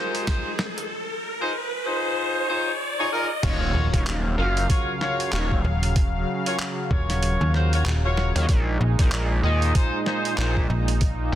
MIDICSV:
0, 0, Header, 1, 8, 480
1, 0, Start_track
1, 0, Tempo, 631579
1, 689, Time_signature, 4, 2, 24, 8
1, 8628, End_track
2, 0, Start_track
2, 0, Title_t, "Horn section"
2, 0, Program_c, 0, 61
2, 0, Note_on_c, 0, 63, 84
2, 0, Note_on_c, 0, 65, 82
2, 0, Note_on_c, 0, 68, 82
2, 0, Note_on_c, 0, 72, 94
2, 184, Note_off_c, 0, 65, 0
2, 184, Note_off_c, 0, 72, 0
2, 185, Note_off_c, 0, 63, 0
2, 185, Note_off_c, 0, 68, 0
2, 207, Note_on_c, 0, 63, 96
2, 208, Note_on_c, 0, 65, 92
2, 208, Note_on_c, 0, 68, 84
2, 208, Note_on_c, 0, 72, 114
2, 384, Note_off_c, 0, 63, 0
2, 384, Note_off_c, 0, 65, 0
2, 384, Note_off_c, 0, 68, 0
2, 384, Note_off_c, 0, 72, 0
2, 1070, Note_on_c, 0, 63, 98
2, 1070, Note_on_c, 0, 65, 85
2, 1070, Note_on_c, 0, 68, 88
2, 1070, Note_on_c, 0, 72, 108
2, 1152, Note_off_c, 0, 63, 0
2, 1152, Note_off_c, 0, 65, 0
2, 1153, Note_off_c, 0, 68, 0
2, 1153, Note_off_c, 0, 72, 0
2, 1406, Note_on_c, 0, 65, 77
2, 1407, Note_on_c, 0, 63, 82
2, 1407, Note_on_c, 0, 68, 73
2, 1407, Note_on_c, 0, 72, 90
2, 1864, Note_off_c, 0, 63, 0
2, 1864, Note_off_c, 0, 65, 0
2, 1864, Note_off_c, 0, 68, 0
2, 1864, Note_off_c, 0, 72, 0
2, 1886, Note_on_c, 0, 63, 97
2, 1886, Note_on_c, 0, 65, 84
2, 1886, Note_on_c, 0, 72, 101
2, 1887, Note_on_c, 0, 68, 85
2, 2063, Note_off_c, 0, 63, 0
2, 2063, Note_off_c, 0, 65, 0
2, 2063, Note_off_c, 0, 72, 0
2, 2064, Note_off_c, 0, 68, 0
2, 2270, Note_on_c, 0, 63, 104
2, 2270, Note_on_c, 0, 68, 94
2, 2270, Note_on_c, 0, 73, 114
2, 2271, Note_on_c, 0, 65, 90
2, 2352, Note_off_c, 0, 68, 0
2, 2352, Note_off_c, 0, 73, 0
2, 2353, Note_off_c, 0, 63, 0
2, 2353, Note_off_c, 0, 65, 0
2, 2367, Note_on_c, 0, 63, 107
2, 2367, Note_on_c, 0, 65, 95
2, 2367, Note_on_c, 0, 70, 115
2, 2368, Note_on_c, 0, 68, 97
2, 2487, Note_off_c, 0, 63, 0
2, 2487, Note_off_c, 0, 65, 0
2, 2487, Note_off_c, 0, 70, 0
2, 2488, Note_off_c, 0, 68, 0
2, 2607, Note_on_c, 0, 70, 96
2, 2607, Note_on_c, 0, 73, 111
2, 2608, Note_on_c, 0, 65, 100
2, 2608, Note_on_c, 0, 66, 96
2, 2933, Note_off_c, 0, 70, 0
2, 2933, Note_off_c, 0, 73, 0
2, 2934, Note_off_c, 0, 65, 0
2, 2934, Note_off_c, 0, 66, 0
2, 2990, Note_on_c, 0, 65, 73
2, 2990, Note_on_c, 0, 73, 80
2, 2991, Note_on_c, 0, 66, 71
2, 2991, Note_on_c, 0, 70, 70
2, 3072, Note_off_c, 0, 73, 0
2, 3073, Note_off_c, 0, 65, 0
2, 3073, Note_off_c, 0, 66, 0
2, 3073, Note_off_c, 0, 70, 0
2, 3327, Note_on_c, 0, 65, 98
2, 3327, Note_on_c, 0, 70, 87
2, 3328, Note_on_c, 0, 66, 86
2, 3328, Note_on_c, 0, 77, 108
2, 3544, Note_off_c, 0, 70, 0
2, 3545, Note_off_c, 0, 65, 0
2, 3545, Note_off_c, 0, 66, 0
2, 3545, Note_off_c, 0, 77, 0
2, 3567, Note_on_c, 0, 65, 98
2, 3567, Note_on_c, 0, 70, 94
2, 3568, Note_on_c, 0, 66, 91
2, 3568, Note_on_c, 0, 73, 107
2, 3744, Note_off_c, 0, 65, 0
2, 3744, Note_off_c, 0, 66, 0
2, 3744, Note_off_c, 0, 70, 0
2, 3744, Note_off_c, 0, 73, 0
2, 3808, Note_on_c, 0, 65, 92
2, 3808, Note_on_c, 0, 66, 83
2, 3808, Note_on_c, 0, 70, 79
2, 3808, Note_on_c, 0, 73, 100
2, 4025, Note_off_c, 0, 65, 0
2, 4025, Note_off_c, 0, 66, 0
2, 4025, Note_off_c, 0, 70, 0
2, 4025, Note_off_c, 0, 73, 0
2, 4049, Note_on_c, 0, 73, 108
2, 4050, Note_on_c, 0, 65, 99
2, 4050, Note_on_c, 0, 66, 89
2, 4050, Note_on_c, 0, 70, 89
2, 4225, Note_off_c, 0, 65, 0
2, 4225, Note_off_c, 0, 66, 0
2, 4225, Note_off_c, 0, 70, 0
2, 4225, Note_off_c, 0, 73, 0
2, 4913, Note_on_c, 0, 66, 83
2, 4913, Note_on_c, 0, 70, 93
2, 4914, Note_on_c, 0, 65, 97
2, 4914, Note_on_c, 0, 73, 103
2, 4994, Note_off_c, 0, 65, 0
2, 4994, Note_off_c, 0, 66, 0
2, 4994, Note_off_c, 0, 70, 0
2, 4994, Note_off_c, 0, 73, 0
2, 5251, Note_on_c, 0, 65, 82
2, 5251, Note_on_c, 0, 70, 76
2, 5251, Note_on_c, 0, 73, 92
2, 5252, Note_on_c, 0, 66, 72
2, 5706, Note_off_c, 0, 70, 0
2, 5706, Note_off_c, 0, 73, 0
2, 5707, Note_off_c, 0, 65, 0
2, 5707, Note_off_c, 0, 66, 0
2, 5733, Note_on_c, 0, 65, 82
2, 5734, Note_on_c, 0, 66, 73
2, 5734, Note_on_c, 0, 70, 70
2, 5734, Note_on_c, 0, 72, 90
2, 5852, Note_off_c, 0, 65, 0
2, 5852, Note_off_c, 0, 66, 0
2, 5852, Note_off_c, 0, 70, 0
2, 5852, Note_off_c, 0, 72, 0
2, 5876, Note_on_c, 0, 65, 98
2, 5876, Note_on_c, 0, 66, 86
2, 5876, Note_on_c, 0, 70, 86
2, 5876, Note_on_c, 0, 73, 103
2, 5955, Note_off_c, 0, 65, 0
2, 5955, Note_off_c, 0, 70, 0
2, 5955, Note_off_c, 0, 73, 0
2, 5956, Note_off_c, 0, 66, 0
2, 6113, Note_on_c, 0, 66, 85
2, 6114, Note_on_c, 0, 65, 101
2, 6114, Note_on_c, 0, 70, 85
2, 6114, Note_on_c, 0, 73, 110
2, 6318, Note_off_c, 0, 65, 0
2, 6318, Note_off_c, 0, 66, 0
2, 6318, Note_off_c, 0, 70, 0
2, 6318, Note_off_c, 0, 73, 0
2, 6354, Note_on_c, 0, 65, 84
2, 6354, Note_on_c, 0, 66, 79
2, 6354, Note_on_c, 0, 73, 93
2, 6355, Note_on_c, 0, 70, 74
2, 6434, Note_off_c, 0, 65, 0
2, 6434, Note_off_c, 0, 73, 0
2, 6435, Note_off_c, 0, 66, 0
2, 6435, Note_off_c, 0, 70, 0
2, 6833, Note_on_c, 0, 65, 73
2, 6834, Note_on_c, 0, 63, 78
2, 6834, Note_on_c, 0, 68, 69
2, 6834, Note_on_c, 0, 72, 79
2, 6914, Note_off_c, 0, 63, 0
2, 6914, Note_off_c, 0, 65, 0
2, 6914, Note_off_c, 0, 68, 0
2, 6914, Note_off_c, 0, 72, 0
2, 7170, Note_on_c, 0, 63, 96
2, 7170, Note_on_c, 0, 65, 89
2, 7170, Note_on_c, 0, 68, 88
2, 7171, Note_on_c, 0, 75, 102
2, 7386, Note_off_c, 0, 63, 0
2, 7386, Note_off_c, 0, 65, 0
2, 7386, Note_off_c, 0, 68, 0
2, 7386, Note_off_c, 0, 75, 0
2, 7409, Note_on_c, 0, 72, 114
2, 7410, Note_on_c, 0, 63, 98
2, 7411, Note_on_c, 0, 65, 94
2, 7411, Note_on_c, 0, 68, 93
2, 7585, Note_off_c, 0, 63, 0
2, 7585, Note_off_c, 0, 72, 0
2, 7586, Note_off_c, 0, 65, 0
2, 7586, Note_off_c, 0, 68, 0
2, 7650, Note_on_c, 0, 63, 93
2, 7650, Note_on_c, 0, 65, 81
2, 7650, Note_on_c, 0, 68, 83
2, 7650, Note_on_c, 0, 72, 99
2, 7866, Note_off_c, 0, 63, 0
2, 7866, Note_off_c, 0, 65, 0
2, 7866, Note_off_c, 0, 68, 0
2, 7866, Note_off_c, 0, 72, 0
2, 7890, Note_on_c, 0, 63, 97
2, 7890, Note_on_c, 0, 65, 86
2, 7890, Note_on_c, 0, 68, 87
2, 7890, Note_on_c, 0, 72, 109
2, 8065, Note_off_c, 0, 63, 0
2, 8065, Note_off_c, 0, 65, 0
2, 8065, Note_off_c, 0, 68, 0
2, 8065, Note_off_c, 0, 72, 0
2, 8628, End_track
3, 0, Start_track
3, 0, Title_t, "Analog synth pad"
3, 0, Program_c, 1, 89
3, 0, Note_on_c, 1, 56, 81
3, 0, Note_on_c, 1, 63, 75
3, 0, Note_on_c, 1, 70, 94
3, 657, Note_off_c, 1, 63, 0
3, 667, Note_off_c, 1, 56, 0
3, 667, Note_off_c, 1, 70, 0
3, 2610, Note_on_c, 1, 77, 95
3, 2611, Note_on_c, 1, 49, 86
3, 2612, Note_on_c, 1, 54, 78
3, 6419, Note_off_c, 1, 77, 0
3, 6420, Note_off_c, 1, 49, 0
3, 6420, Note_off_c, 1, 54, 0
3, 6454, Note_on_c, 1, 46, 84
3, 6454, Note_on_c, 1, 63, 97
3, 6455, Note_on_c, 1, 56, 79
3, 8352, Note_off_c, 1, 56, 0
3, 8370, Note_on_c, 1, 58, 79
3, 8628, Note_off_c, 1, 46, 0
3, 8628, Note_off_c, 1, 58, 0
3, 8628, Note_off_c, 1, 63, 0
3, 8628, End_track
4, 0, Start_track
4, 0, Title_t, "Analog synth bass"
4, 0, Program_c, 2, 38
4, 2608, Note_on_c, 2, 27, 90
4, 2833, Note_off_c, 2, 27, 0
4, 2990, Note_on_c, 2, 27, 98
4, 3072, Note_off_c, 2, 27, 0
4, 3089, Note_on_c, 2, 27, 96
4, 3313, Note_off_c, 2, 27, 0
4, 3328, Note_on_c, 2, 30, 98
4, 3553, Note_off_c, 2, 30, 0
4, 4049, Note_on_c, 2, 27, 94
4, 4273, Note_off_c, 2, 27, 0
4, 6351, Note_on_c, 2, 39, 100
4, 6433, Note_off_c, 2, 39, 0
4, 6450, Note_on_c, 2, 34, 96
4, 6674, Note_off_c, 2, 34, 0
4, 6832, Note_on_c, 2, 34, 98
4, 6913, Note_off_c, 2, 34, 0
4, 6930, Note_on_c, 2, 34, 99
4, 7153, Note_off_c, 2, 34, 0
4, 7169, Note_on_c, 2, 39, 96
4, 7393, Note_off_c, 2, 39, 0
4, 7889, Note_on_c, 2, 34, 96
4, 8113, Note_off_c, 2, 34, 0
4, 8628, End_track
5, 0, Start_track
5, 0, Title_t, "FM bass"
5, 0, Program_c, 3, 39
5, 2846, Note_on_c, 3, 27, 95
5, 2967, Note_off_c, 3, 27, 0
5, 4288, Note_on_c, 3, 27, 99
5, 4753, Note_off_c, 3, 27, 0
5, 5249, Note_on_c, 3, 27, 97
5, 5609, Note_off_c, 3, 27, 0
5, 5631, Note_on_c, 3, 39, 94
5, 5953, Note_off_c, 3, 39, 0
5, 5970, Note_on_c, 3, 27, 99
5, 6329, Note_off_c, 3, 27, 0
5, 6692, Note_on_c, 3, 34, 97
5, 6810, Note_off_c, 3, 34, 0
5, 8130, Note_on_c, 3, 34, 94
5, 8594, Note_off_c, 3, 34, 0
5, 8628, End_track
6, 0, Start_track
6, 0, Title_t, "Impact"
6, 0, Program_c, 4, 103
6, 2607, Note_on_c, 4, 60, 80
6, 4528, Note_off_c, 4, 60, 0
6, 8628, End_track
7, 0, Start_track
7, 0, Title_t, "Riser"
7, 0, Program_c, 5, 103
7, 0, Note_on_c, 5, 60, 72
7, 2607, Note_off_c, 5, 60, 0
7, 8628, End_track
8, 0, Start_track
8, 0, Title_t, "Drums"
8, 111, Note_on_c, 9, 42, 50
8, 187, Note_off_c, 9, 42, 0
8, 207, Note_on_c, 9, 36, 88
8, 208, Note_on_c, 9, 38, 89
8, 208, Note_on_c, 9, 42, 69
8, 283, Note_off_c, 9, 36, 0
8, 284, Note_off_c, 9, 38, 0
8, 284, Note_off_c, 9, 42, 0
8, 447, Note_on_c, 9, 38, 88
8, 523, Note_off_c, 9, 38, 0
8, 591, Note_on_c, 9, 42, 55
8, 667, Note_off_c, 9, 42, 0
8, 2608, Note_on_c, 9, 36, 105
8, 2608, Note_on_c, 9, 42, 66
8, 2608, Note_on_c, 9, 49, 101
8, 2684, Note_off_c, 9, 36, 0
8, 2684, Note_off_c, 9, 42, 0
8, 2684, Note_off_c, 9, 49, 0
8, 2991, Note_on_c, 9, 36, 98
8, 2992, Note_on_c, 9, 42, 56
8, 3067, Note_off_c, 9, 36, 0
8, 3068, Note_off_c, 9, 42, 0
8, 3090, Note_on_c, 9, 39, 117
8, 3090, Note_on_c, 9, 42, 69
8, 3166, Note_off_c, 9, 39, 0
8, 3166, Note_off_c, 9, 42, 0
8, 3473, Note_on_c, 9, 42, 54
8, 3549, Note_off_c, 9, 42, 0
8, 3569, Note_on_c, 9, 36, 110
8, 3570, Note_on_c, 9, 42, 67
8, 3645, Note_off_c, 9, 36, 0
8, 3646, Note_off_c, 9, 42, 0
8, 3809, Note_on_c, 9, 40, 42
8, 3885, Note_off_c, 9, 40, 0
8, 3952, Note_on_c, 9, 42, 51
8, 4028, Note_off_c, 9, 42, 0
8, 4048, Note_on_c, 9, 39, 127
8, 4048, Note_on_c, 9, 42, 72
8, 4124, Note_off_c, 9, 39, 0
8, 4124, Note_off_c, 9, 42, 0
8, 4192, Note_on_c, 9, 36, 60
8, 4268, Note_off_c, 9, 36, 0
8, 4430, Note_on_c, 9, 42, 54
8, 4506, Note_off_c, 9, 42, 0
8, 4528, Note_on_c, 9, 42, 66
8, 4529, Note_on_c, 9, 36, 120
8, 4604, Note_off_c, 9, 42, 0
8, 4605, Note_off_c, 9, 36, 0
8, 4912, Note_on_c, 9, 42, 56
8, 4988, Note_off_c, 9, 42, 0
8, 5010, Note_on_c, 9, 39, 127
8, 5010, Note_on_c, 9, 42, 65
8, 5086, Note_off_c, 9, 39, 0
8, 5086, Note_off_c, 9, 42, 0
8, 5250, Note_on_c, 9, 36, 106
8, 5326, Note_off_c, 9, 36, 0
8, 5394, Note_on_c, 9, 40, 40
8, 5394, Note_on_c, 9, 42, 54
8, 5470, Note_off_c, 9, 40, 0
8, 5470, Note_off_c, 9, 42, 0
8, 5491, Note_on_c, 9, 42, 73
8, 5567, Note_off_c, 9, 42, 0
8, 5732, Note_on_c, 9, 40, 40
8, 5808, Note_off_c, 9, 40, 0
8, 5874, Note_on_c, 9, 42, 51
8, 5950, Note_off_c, 9, 42, 0
8, 5972, Note_on_c, 9, 39, 123
8, 5972, Note_on_c, 9, 42, 66
8, 6048, Note_off_c, 9, 39, 0
8, 6048, Note_off_c, 9, 42, 0
8, 6213, Note_on_c, 9, 40, 52
8, 6289, Note_off_c, 9, 40, 0
8, 6352, Note_on_c, 9, 42, 53
8, 6428, Note_off_c, 9, 42, 0
8, 6450, Note_on_c, 9, 42, 65
8, 6451, Note_on_c, 9, 36, 117
8, 6526, Note_off_c, 9, 42, 0
8, 6527, Note_off_c, 9, 36, 0
8, 6832, Note_on_c, 9, 42, 56
8, 6833, Note_on_c, 9, 36, 105
8, 6908, Note_off_c, 9, 42, 0
8, 6909, Note_off_c, 9, 36, 0
8, 6928, Note_on_c, 9, 39, 122
8, 6928, Note_on_c, 9, 42, 64
8, 7004, Note_off_c, 9, 39, 0
8, 7004, Note_off_c, 9, 42, 0
8, 7312, Note_on_c, 9, 42, 50
8, 7388, Note_off_c, 9, 42, 0
8, 7410, Note_on_c, 9, 36, 113
8, 7410, Note_on_c, 9, 42, 69
8, 7486, Note_off_c, 9, 36, 0
8, 7486, Note_off_c, 9, 42, 0
8, 7648, Note_on_c, 9, 40, 39
8, 7724, Note_off_c, 9, 40, 0
8, 7792, Note_on_c, 9, 42, 49
8, 7868, Note_off_c, 9, 42, 0
8, 7888, Note_on_c, 9, 39, 124
8, 7888, Note_on_c, 9, 42, 68
8, 7964, Note_off_c, 9, 39, 0
8, 7964, Note_off_c, 9, 42, 0
8, 8032, Note_on_c, 9, 36, 63
8, 8108, Note_off_c, 9, 36, 0
8, 8270, Note_on_c, 9, 42, 52
8, 8346, Note_off_c, 9, 42, 0
8, 8367, Note_on_c, 9, 42, 65
8, 8370, Note_on_c, 9, 36, 115
8, 8443, Note_off_c, 9, 42, 0
8, 8446, Note_off_c, 9, 36, 0
8, 8628, End_track
0, 0, End_of_file